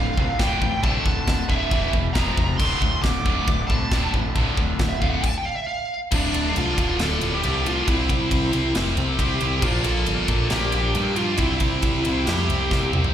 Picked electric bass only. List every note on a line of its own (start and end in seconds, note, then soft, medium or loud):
0.17 0.31 C2 medium
0.39 0.53 D1 medium
0.62 0.76 A1 medium
0.84 0.98 C2 medium
1.06 1.20 D1 medium
1.28 1.42 D1 loud
1.50 1.64 D1 medium
1.72 1.86 E1 loud
1.94 2.08 E1 medium
2.16 2.30 F1 medium
2.37 2.52 E1 loud
2.60 2.74 D1 loud
2.82 2.96 D2 medium
3.04 3.18 D1 medium
3.26 3.40 D1 medium
3.48 3.62 D1 loud
3.70 3.84 C2 medium
3.91 4.06 D1 medium
4.14 4.28 A1 loud
4.36 4.50 C2 loud
4.58 4.72 D1 medium
4.80 4.94 D1 medium
5.02 5.16 D1 medium
6.12 6.31 D1 loud
6.34 6.53 D1 medium
6.57 6.75 C2 medium
6.78 6.97 D1 medium
7.00 7.19 D1 loud
7.22 7.41 D1 loud
7.44 7.81 C2 medium
7.88 8.06 C2 medium
8.10 8.28 C2 medium
8.31 8.50 C2 loud
8.54 8.72 C2 medium
8.76 8.94 F1 loud
8.98 9.16 C2 loud
9.19 9.38 C2 medium
9.42 9.60 C2 medium
9.62 9.81 A#1 medium
9.85 10.04 A#1 medium
10.07 10.26 G1 medium
10.29 10.48 A#1 medium
10.52 10.70 A#1 loud
10.74 10.92 A#1 loud
10.95 11.32 G2 medium
11.39 11.58 C2 loud
11.61 11.80 C2 medium
11.83 12.02 C2 medium
12.06 12.24 C2 medium
12.28 12.46 F2 loud
12.50 12.68 C2 medium
12.71 12.90 C2 medium
12.94 13.12 C2 loud